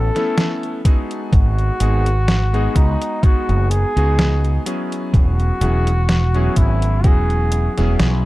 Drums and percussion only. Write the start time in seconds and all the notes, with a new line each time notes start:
0.16 snare, closed hi-hat
0.38 snare, closed hi-hat
0.63 closed hi-hat
0.85 kick, closed hi-hat
1.11 closed hi-hat
1.33 kick, closed hi-hat
1.58 closed hi-hat
1.80 closed hi-hat
2.06 closed hi-hat
2.28 snare, closed hi-hat
2.54 closed hi-hat
2.75 kick, closed hi-hat
3.02 closed hi-hat
3.23 kick, closed hi-hat
3.49 closed hi-hat
3.71 closed hi-hat
3.97 closed hi-hat
4.19 snare, closed hi-hat
4.45 closed hi-hat
4.66 closed hi-hat
4.92 closed hi-hat
5.14 kick, closed hi-hat
5.40 closed hi-hat
5.61 closed hi-hat
5.87 closed hi-hat
6.09 snare, closed hi-hat
6.34 closed hi-hat
6.56 kick, closed hi-hat
6.82 closed hi-hat
7.04 kick, closed hi-hat
7.30 closed hi-hat
7.52 closed hi-hat
7.78 snare, closed hi-hat
8.00 snare, closed hi-hat